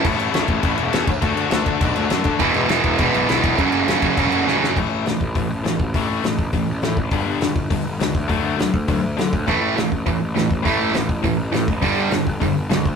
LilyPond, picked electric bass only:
\new Staff \with { instrumentName = "Picked electric bass" } { \clef bass \time 4/4 \key a \major \tempo 4 = 204 a,,8 a,,8 a,,8 a,,8 a,,8 e,,8 e,8 d,8 | d,8 d,8 d,8 d,8 b,,8 d,8 fis,8 d8 | e,,8 e,,8 e,,8 e,,8 e,,8 b,,8 b,,8 b,,8 | fis,,8 fis,,8 fis,,8 fis,,8 e,,8 fis,,8 a,,8 fis,8 |
a,,8 a,,8 a,,8 a,,8 a,,8 a,,8 a,,8 a,,8 | a,,8 a,,8 a,,8 a,,8 a,,8 a,,8 a,8 a,,8 | g,,8 g,,8 g,,8 g,,8 g,,8 g,,8 cis,8 d,8 | d,8 d,8 d,8 d,8 d,8 d,8 d8 d,8 |
a,,8 a,,8 a,,8 a,,8 a,,8 a,,8 a,,8 a,,8 | a,,8 a,,8 a,,8 a,,8 a,,8 a,,8 a,8 a,,8 | g,,8 g,,8 g,,8 g,,8 g,,8 g,,8 cis,8 d,8 | }